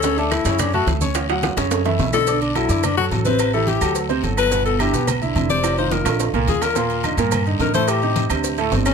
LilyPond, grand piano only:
\new Staff \with { instrumentName = "Grand piano" } { \time 4/4 \key b \minor \tempo 4 = 214 <cis cis' cis''>8 <a a' a''>4 <cis cis' cis''>4 <a a' a''>4 <cis' cis'' cis'''>8~ | <cis' cis'' cis'''>8 <fis fis' fis''>4 <cis cis' cis''>4 <e e' e''>4 <d d' d''>8 | <d d' d''>4 <fis fis' a'>8 <d d' d''>4 <fis fis' a'>8 <fis fis' a'>8 <c c' c''>8~ | <c c' c''>8 <e e' g'>4 <fis fis' a'>4 <c c' c''>8 <fis fis' a'>4 |
<b, b b'>4 <d d' e'>8 <b, b b'>4 <d d' e'>8 <d d' e'>8 <c c' c''>8~ | <c c' c''>8 <ees ees' f'>4 <d d' f'>4 <bes, bes bes'>8 <d d' f'>4 | <bes, bes bes'>4 <d d' ees'>8 <bes, bes bes'>4 <d d' ees'>8 <d d' ees'>8 <a, a a'>8~ | <a, a a'>8 <c c' ees'>4 <c c' d'>4 <a, a a'>8 <c c' d'>4 | }